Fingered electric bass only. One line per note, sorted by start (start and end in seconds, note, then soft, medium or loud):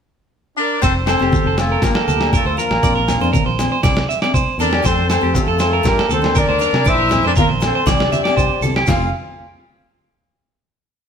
0.83 1.16 F1 medium
1.21 1.31 F1 medium
1.44 1.77 F1 medium
1.82 1.94 G1 loud
2.07 2.29 D2 medium
2.45 2.56 D2 medium
2.71 2.81 A1 medium
2.83 3.16 A#1 medium
3.20 3.31 F2 medium
3.46 3.68 A#1 medium
3.84 4.05 C2 medium
4.34 4.45 C2 medium
4.58 4.80 E2 medium
4.85 5.17 F2 loud
5.23 5.33 F2 medium
5.47 5.79 F2 medium
5.85 5.96 G2 loud
6.09 6.31 D2 medium
6.48 6.59 D2 medium
6.73 6.84 C3 medium
6.86 7.18 A#1 loud
7.23 7.34 F2 medium
7.49 7.70 A#1 medium
7.86 8.08 C2 medium
8.37 8.48 C2 medium
8.61 8.83 C2 medium
8.87 9.11 F1 medium